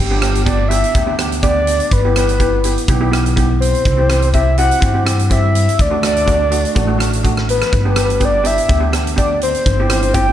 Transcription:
Already playing: G1
0.05 G4
0.10 B3 D4 G4
0.21 B3 D4 G4, cross-stick, closed hi-hat
0.27 G4
0.35 G4, closed hi-hat
0.45 B3 D4 G4 D5, kick, closed hi-hat
0.69 B3 D4 G4 E5, closed hi-hat
0.84 closed hi-hat
0.95 D2 B3 D4 G4, kick, closed hi-hat
1.06 B3 D4 G4
1.18 B3 D4 G4, cross-stick, closed hi-hat
1.32 closed hi-hat
1.43 B3 D4 G4 D5, kick, closed hi-hat
1.67 closed hi-hat
1.80 closed hi-hat
1.91 G1 B4, kick, closed hi-hat
2.05 B3 E4 G4
2.16 B3 E4 G4 B4, cross-stick, closed hi-hat
2.29 closed hi-hat
2.40 B3 E4 G4, kick, closed hi-hat
2.64 B3 E4 G4, closed hi-hat
2.78 closed hi-hat
2.88 B1 B3 E4 G4, kick, closed hi-hat
3.01 B3 E4 G4
3.11 B3 E4 G4, cross-stick, closed hi-hat
3.26 closed hi-hat
3.36 B3 E4 G4, kick, closed hi-hat
3.60 C5, closed hi-hat
3.75 closed hi-hat
3.85 C2, kick, closed hi-hat
3.97 C4 E4 G4
4.10 C4 E4 G4, cross-stick, closed hi-hat
4.22 closed hi-hat
4.34 C4 E4 G4 E5, kick, closed hi-hat
4.58 C4 E4 G4 F#5, closed hi-hat
4.71 closed hi-hat
4.81 G2 C4 E4 G4, kick, closed hi-hat
4.94 C4 E4 G4
5.05 C4 E4 G4, cross-stick, closed hi-hat
5.19 closed hi-hat
5.30 C4 E4 G4 E5, kick, closed hi-hat
5.55 closed hi-hat
5.69 closed hi-hat
5.79 D2 D5, kick, closed hi-hat
5.90 A3 D4 F#4
6.03 A3 D4 F#4 D5, cross-stick, closed hi-hat
6.17 closed hi-hat
6.26 A3 D4 F#4, kick, closed hi-hat
6.51 A3 D4 F#4, closed hi-hat
6.65 closed hi-hat
6.75 A1 A3 D4 F#4, kick, closed hi-hat
6.87 A3 D4 F#4
6.98 A3 D4 F#4, cross-stick, closed hi-hat
7.13 closed hi-hat
7.23 A3 D4 F#4, kick, closed hi-hat
7.37 cross-stick
7.49 B4, closed hi-hat
7.57 B4
7.62 B4, cross-stick, closed hi-hat
7.71 G1 B4, kick, closed hi-hat
7.80 B4
7.85 B3 D4 G4 B4
7.94 B3 D4 G4 B4, cross-stick, closed hi-hat
8.04 B4
8.10 B4, closed hi-hat
8.20 B3 D4 G4, kick, closed hi-hat
8.25 D5
8.43 B3 D4 G4 E5, closed hi-hat
8.58 closed hi-hat
8.69 D2 B3 D4 G4, kick, closed hi-hat
8.80 B3 D4 G4
8.92 B3 D4 G4, cross-stick, closed hi-hat
9.07 closed hi-hat
9.16 B3 D4 G4 D5, kick, closed hi-hat
9.41 C5, closed hi-hat
9.51 C5, closed hi-hat
9.58 C5
9.64 G1 C5, kick, closed hi-hat
9.72 C5
9.79 C4 E4 G4 C5
9.87 C4 E4 G4 C5, cross-stick, closed hi-hat
9.95 C5
10.02 C5, closed hi-hat
10.14 C4 E4 G4 G5, kick, closed hi-hat

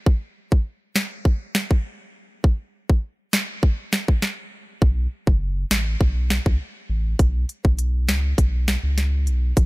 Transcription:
0.06 kick
0.52 kick
0.96 snare
1.25 kick
1.55 snare
1.71 kick
2.44 kick
2.90 kick
3.33 snare
3.63 kick
3.93 snare
4.08 kick
4.22 snare
4.82 B1, kick
5.27 F#1, kick
5.71 A1, snare
6.01 B1, kick
6.30 snare
6.46 C#2, kick
6.90 A1
7.19 B1, kick, closed hi-hat
7.49 closed hi-hat
7.65 B1, kick
7.79 closed hi-hat
8.08 C#2, snare, closed hi-hat
8.38 B1, kick, closed hi-hat
8.68 snare, closed hi-hat
8.84 C#2
8.98 snare, closed hi-hat
9.27 B1, closed hi-hat
9.57 A1, kick, closed hi-hat

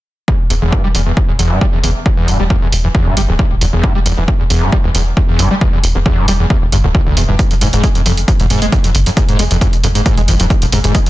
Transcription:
0.28 E2, kick
0.50 E1 E2, open hi-hat
0.62 E1 E2
0.72 G2, kick
0.84 G3
0.95 E1 E2, open hi-hat
1.06 E2
1.17 kick
1.29 E1 E2
1.39 E1 E2, open hi-hat
1.51 G2
1.61 G3, kick
1.73 E2
1.83 F#1 E2, open hi-hat
2.06 E2, kick
2.17 E2
2.28 E1 G2, open hi-hat
2.40 E1 G3
2.50 E2, kick
2.62 E2
2.72 E1, open hi-hat
2.84 E2
2.95 E2, kick
3.06 E1 G2
3.17 G1 G3, open hi-hat
3.29 D1 E2
3.39 E2, kick
3.51 D1
3.61 E1 E2, open hi-hat
3.73 E1 E2
3.84 G2, kick
3.95 G3
4.06 E1 E2, open hi-hat
4.17 E1 E2
4.28 kick
4.40 E2
4.50 E1 E2, open hi-hat
4.62 G2
4.72 G3, kick
4.84 E1 E2
4.95 E1 E2, open hi-hat
5.17 E2, kick
5.29 E2
5.39 F#1 G2, open hi-hat
5.51 G3
5.61 E2, kick
5.73 E2
5.84 E1, open hi-hat
5.95 E1 E2
6.06 E2, kick
6.17 G2
6.28 E1 G3, open hi-hat
6.40 E2
6.50 E2, kick
6.62 E1
6.72 G1 G2, open hi-hat
6.84 D1 D2
6.95 D2, kick
7.06 D1 D2
7.17 E1 E2, open hi-hat
7.29 E1 G2
7.39 kick, closed hi-hat
7.51 F2, closed hi-hat
7.61 F1 G#2, open hi-hat
7.73 F1 G#2, closed hi-hat
7.84 G#3, kick, closed hi-hat
7.95 F2, closed hi-hat
8.06 F1 F2, open hi-hat
8.17 closed hi-hat
8.28 F2, kick, closed hi-hat
8.40 F1 G#2, closed hi-hat
8.50 F1 G#2, open hi-hat
8.62 G#3, closed hi-hat
8.72 F2, kick, closed hi-hat
8.84 F2, closed hi-hat
8.95 G1, open hi-hat
9.06 F2, closed hi-hat
9.17 G#2, kick, closed hi-hat
9.29 G#2, closed hi-hat
9.39 F1 G#3, open hi-hat
9.51 F1 F2, closed hi-hat
9.61 F2, kick, closed hi-hat
9.73 closed hi-hat
9.84 F1 F2, open hi-hat
9.95 G#2, closed hi-hat
10.06 G#2, kick, closed hi-hat
10.17 F1 G#3, closed hi-hat
10.28 G#1 F2, open hi-hat
10.40 D#1 F2, closed hi-hat
10.50 kick, closed hi-hat
10.62 D#1 F2, closed hi-hat
10.72 F1 G#2, open hi-hat
10.84 F1 G#2, closed hi-hat
10.95 G#3, kick, closed hi-hat
11.06 F2, closed hi-hat

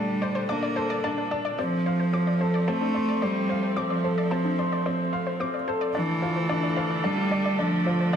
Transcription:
Already playing: A#2 D3 G3 D4 A4 D5 A5
0.22 C5 D5
0.35 C5
0.49 A#3 D4 D6
0.63 D5
0.76 A4 C5
0.90 D5
1.04 D4 A5
1.18 D4
1.31 D5 A5
1.45 D5
1.59 F3 A3 C4 D5
1.86 C5 F5
2.00 C5
2.13 C4 D6
2.27 D5
2.41 A4 C5
2.54 D5
2.68 A3 C4 A5
2.81 D4
2.94 D5 C6
3.08 D5
3.22 G3 C4 D5
3.49 C5 F5
3.63 C5
3.76 F3 C4 D6
3.90 D5
4.04 A4 C5
4.18 D5
4.31 C4 A5
4.45 D4
4.58 D5 C6
4.72 D5
4.86 C4 D5
5.13 C5 F5
5.27 C5
5.40 C4 D6
5.54 D5
5.68 A4 C5
5.81 D5
5.95 D3 E3 A3 D4 A4 D5
6.22 D2 F4 C5
6.36 C5
6.49 D4 D6
6.63 D5
6.76 D1 C5 F5
6.90 D5
7.04 G3 D4 A5
7.18 D4
7.31 D2 D5
7.45 D5
7.59 F3 D4 D5
7.86 D2 F4 C5
8.00 C5
8.12 D4 G4

